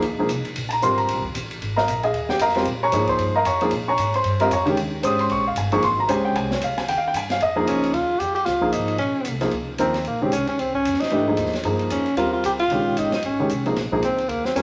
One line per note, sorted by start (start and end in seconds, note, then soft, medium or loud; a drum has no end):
0.02 0.11 D#2 medium
0.02 ride medium
0.11 0.19 C#2 medium
0.19 0.28 A#1 medium
0.19 0.29 F3 medium
0.19 0.28 A#3 medium
0.19 0.29 D#4 medium
0.19 0.29 G#4 medium
0.28 0.43 C2 medium
0.28 hi-hat pedal soft
0.28 ride medium
0.44 muted upright bass stroke soft
0.44 ride soft
0.55 0.81 A#1 medium
0.55 ride medium
0.69 0.70 A5 medium
0.69 0.82 A#5 medium
0.69 ride medium
0.82 1.07 G#1 medium
0.82 1.21 G3 medium
0.82 1.21 C4 medium
0.82 1.22 F4 soft
0.82 1.21 A#4 medium
0.82 0.98 C6 medium
0.82 hi-hat pedal medium
0.98 1.22 A#5 medium
0.98 ride soft
1.08 1.17 A#1 medium
1.08 ride medium
1.17 1.25 G#1 medium
1.24 1.34 D#1 medium
1.24 kick medium
1.34 1.60 A1 loud
1.34 hi-hat pedal medium
1.34 ride medium
1.51 ride soft
1.61 1.87 G#1 medium
1.61 ride medium
1.76 2.02 A#4 medium
1.76 2.02 D#5 medium
1.76 2.01 F5 medium
1.76 2.01 A#5 medium
1.76 snare soft
1.88 2.12 A#1 loud
1.88 hi-hat pedal medium
1.88 ride medium
2.03 2.28 G#4 medium
2.03 2.28 D#5 medium
2.03 2.28 F5 medium
2.03 2.28 G#5 medium
2.03 ride soft
2.13 2.39 D#2 medium
2.13 ride medium
2.29 2.40 G4 medium
2.29 2.40 G5 loud
2.29 snare soft
2.39 2.65 F2 loud
2.39 2.55 A#4 medium
2.39 2.56 D#5 medium
2.39 2.56 F5 medium
2.39 2.56 A#5 medium
2.39 hi-hat pedal soft
2.39 ride medium
2.48 snare soft
2.54 2.65 G3 medium
2.54 2.66 C4 medium
2.54 2.65 F4 medium
2.54 2.66 A#4 medium
2.54 snare soft
2.54 ride soft
2.65 2.92 A#2 medium
2.65 ride medium
2.83 3.07 C#5 medium
2.83 3.07 G#5 medium
2.83 3.07 A#5 medium
2.83 3.07 C#6 loud
2.92 3.18 G#2 medium
2.92 3.31 F3 medium
2.92 3.32 A#3 medium
2.92 3.32 D#4 medium
2.92 3.32 G#4 medium
2.92 hi-hat pedal medium
2.92 ride medium
3.07 3.34 C5 medium
3.07 3.33 C6 medium
3.07 kick medium
3.07 ride soft
3.19 3.44 G2 medium
3.19 ride medium
3.36 3.46 A#4 medium
3.36 3.46 D#5 medium
3.36 3.46 F5 medium
3.36 3.45 A#5 medium
3.45 3.71 F2 medium
3.45 3.62 C#5 medium
3.45 3.61 G#5 medium
3.45 3.61 A#5 medium
3.45 3.61 C#6 medium
3.45 hi-hat pedal medium
3.45 ride medium
3.61 3.71 F3 medium
3.61 3.71 A#3 medium
3.61 3.71 D#4 medium
3.61 3.71 G#4 medium
3.61 ride soft
3.71 3.97 A#2 medium
3.71 ride medium
3.88 4.13 C#5 medium
3.88 4.13 G#5 medium
3.88 4.13 A#5 medium
3.88 4.12 C#6 loud
3.98 4.24 G#2 medium
3.98 hi-hat pedal medium
3.98 ride medium
4.14 4.39 C5 medium
4.14 4.39 C6 medium
4.14 ride soft
4.24 4.50 G2 medium
4.24 ride medium
4.40 4.50 G3 medium
4.40 4.50 C4 medium
4.40 4.50 F4 medium
4.40 4.50 A#4 medium
4.40 4.51 D#5 medium
4.40 4.52 F5 medium
4.40 4.51 A#5 medium
4.40 ride soft
4.50 4.76 F2 medium
4.50 4.62 C#5 medium
4.50 4.62 G#5 medium
4.50 4.62 A#5 medium
4.50 4.62 C#6 loud
4.50 hi-hat pedal medium
4.50 ride medium
4.65 4.76 D#3 medium
4.65 4.76 G#3 medium
4.65 4.76 C#4 medium
4.65 4.76 G4 medium
4.65 ride soft
4.77 5.03 D#2 medium
4.77 ride medium
5.03 5.30 G#1 medium
5.03 5.42 G#3 medium
5.03 5.42 C#4 medium
5.03 5.42 G4 medium
5.03 5.42 C5 medium
5.03 5.19 D#6 loud
5.03 hi-hat pedal medium
5.03 ride medium
5.19 5.30 C6 medium
5.19 ride soft
5.29 5.55 A#1 medium
5.29 5.46 C#6 loud
5.29 ride medium
5.47 5.57 F5 medium
5.56 5.82 G1 loud
5.56 5.72 G#5 medium
5.56 hi-hat pedal medium
5.56 ride medium
5.72 5.82 F3 medium
5.72 5.82 A#3 medium
5.72 5.82 D#4 medium
5.72 5.82 G#4 medium
5.72 5.83 C#6 loud
5.72 ride soft
5.82 6.08 G#1 medium
5.82 5.98 C6 loud
5.82 ride medium
6.00 6.10 A#5 medium
6.08 6.34 C#2 medium
6.08 6.47 G#3 medium
6.08 6.48 C#4 medium
6.08 6.48 G4 medium
6.08 6.48 C5 medium
6.08 6.25 G#5 medium
6.08 hi-hat pedal medium
6.08 ride medium
6.25 6.35 G5 medium
6.36 6.61 C2 medium
6.36 6.51 G#5 loud
6.36 ride medium
6.51 6.62 C#5 medium
6.51 snare medium
6.61 6.87 C#2 loud
6.61 6.78 F5 medium
6.61 hi-hat pedal medium
6.61 ride medium
6.78 6.88 G#5 loud
6.78 snare soft
6.78 ride soft
6.88 7.13 D#2 medium
6.88 6.97 G5 loud
6.88 ride medium
6.98 7.06 F5 medium
7.08 7.15 G5 medium
7.13 7.39 G2 medium
7.13 7.31 G#5 loud
7.13 hi-hat pedal medium
7.13 ride medium
7.30 7.41 F5 medium
7.30 snare soft
7.30 ride medium
7.40 7.66 F2 medium
7.40 7.81 D#5 medium
7.40 ride medium
7.56 7.91 F3 medium
7.56 7.91 A#3 medium
7.56 7.92 D#4 medium
7.56 7.92 G#4 medium
7.66 7.92 C#2 loud
7.66 7.95 C#4 medium
7.66 hi-hat pedal soft
7.66 ride medium
7.83 ride soft
7.92 8.19 D#2 medium
7.92 8.21 F4 medium
7.92 ride medium
8.19 8.46 F2 medium
8.19 8.34 G4 medium
8.19 hi-hat pedal medium
8.19 ride medium
8.35 8.47 G4 medium
8.35 ride soft
8.45 8.72 C#2 medium
8.45 8.74 F4 medium
8.45 snare soft
8.45 ride soft
8.61 8.97 F3 medium
8.61 8.97 A#3 medium
8.61 8.97 D#4 medium
8.61 8.97 G#4 medium
8.61 kick medium
8.72 8.98 G#1 medium
8.72 8.98 D#4 medium
8.72 hi-hat pedal medium
8.72 ride medium
8.88 ride soft
8.98 9.14 A#1 medium
8.98 9.38 C#4 medium
8.98 ride soft
9.15 muted upright bass stroke soft
9.25 9.52 C2 medium
9.25 hi-hat pedal medium
9.25 ride medium
9.41 9.51 F3 medium
9.41 9.51 A#3 medium
9.41 9.51 D#4 medium
9.41 9.51 G#4 medium
9.41 snare soft
9.41 ride soft
9.51 9.78 C#2 medium
9.51 ride soft
9.78 10.05 D#2 medium
9.78 9.93 F3 medium
9.78 9.93 A#3 medium
9.78 10.04 C4 medium
9.78 9.93 D#4 medium
9.78 9.93 A#4 medium
9.78 hi-hat pedal soft
9.78 ride medium
9.94 snare soft
9.94 ride soft
10.05 10.31 A#1 medium
10.05 10.24 A#3 medium
10.05 ride medium
10.22 10.31 D#3 medium
10.22 10.31 G#3 medium
10.22 10.32 C4 medium
10.22 10.31 C#4 medium
10.22 10.32 G4 medium
10.32 10.47 C2 medium
10.32 10.47 C#4 medium
10.32 hi-hat pedal medium
10.32 ride medium
10.47 10.60 C#4 medium
10.47 muted upright bass stroke soft
10.47 ride soft
10.59 10.84 C#2 medium
10.59 10.74 C4 medium
10.59 ride medium
10.74 11.02 C#4 medium
10.74 kick soft
10.85 11.00 F2 medium
10.85 hi-hat pedal soft
10.85 ride medium
10.94 snare soft
11.00 11.54 D#4 medium
11.00 muted upright bass stroke soft
11.00 snare soft
11.00 ride soft
11.10 11.37 G#2 medium
11.10 11.25 E3 medium
11.10 11.26 A3 medium
11.10 11.26 D4 medium
11.10 11.26 G4 medium
11.10 ride soft
11.27 11.51 F3 medium
11.27 11.51 A#3 medium
11.27 11.51 D#4 medium
11.27 11.51 G#4 medium
11.37 11.64 D#2 medium
11.37 hi-hat pedal medium
11.37 ride medium
11.46 snare soft
11.53 snare soft
11.53 ride soft
11.63 11.90 G2 medium
11.63 12.04 F3 medium
11.63 12.04 A#3 medium
11.63 12.04 D#4 soft
11.63 12.04 G#4 medium
11.63 ride medium
11.79 ride soft
11.90 12.16 F2 medium
11.90 12.16 C#4 medium
11.90 hi-hat pedal soft
11.90 ride medium
12.06 ride soft
12.16 12.43 D#2 medium
12.16 12.56 G3 medium
12.16 12.57 C4 medium
12.16 12.32 F4 medium
12.16 12.57 F4 medium
12.16 12.57 A#4 medium
12.16 ride medium
12.33 12.43 F4 medium
12.44 12.69 C#2 medium
12.44 12.52 G4 medium
12.44 hi-hat pedal soft
12.44 ride medium
12.59 13.00 F4 medium
12.59 ride soft
12.70 12.96 A#1 medium
12.70 13.10 D#3 medium
12.70 13.10 G#3 medium
12.70 13.10 C#4 medium
12.70 13.10 G4 medium
12.70 ride medium
12.97 13.11 A1 medium
12.97 13.13 D#4 medium
12.97 hi-hat pedal soft
12.97 ride medium
13.12 13.24 D#4 medium
13.12 muted upright bass stroke soft
13.12 snare soft
13.12 ride soft
13.23 13.49 G#1 medium
13.23 13.64 C#4 medium
13.23 ride medium
13.40 13.49 D#3 medium
13.40 13.49 G#3 medium
13.40 13.49 C#4 medium
13.40 13.49 G4 medium
13.49 13.75 C2 medium
13.49 hi-hat pedal medium
13.49 ride medium
13.66 13.75 F3 medium
13.66 13.75 A#3 medium
13.66 13.76 D#4 medium
13.66 13.76 G#4 medium
13.66 ride soft
13.76 14.01 A#1 medium
13.76 snare soft
13.76 ride medium
13.92 14.02 F3 medium
13.92 14.02 A#3 medium
13.92 14.02 D#4 medium
13.92 14.02 G#4 medium
13.92 kick medium
14.01 14.28 C#2 medium
14.01 14.30 C4 medium
14.01 hi-hat pedal soft
14.01 ride medium
14.18 ride soft
14.29 14.55 D#2 medium
14.29 14.47 A#3 medium
14.29 ride soft
14.45 14.55 C4 medium
14.45 snare soft
14.55 14.62 F2 medium
14.55 14.62 G3 medium
14.55 14.62 C4 soft
14.55 14.62 C#4 medium
14.55 14.62 F4 soft
14.55 14.62 A#4 medium
14.55 hi-hat pedal soft
14.55 ride medium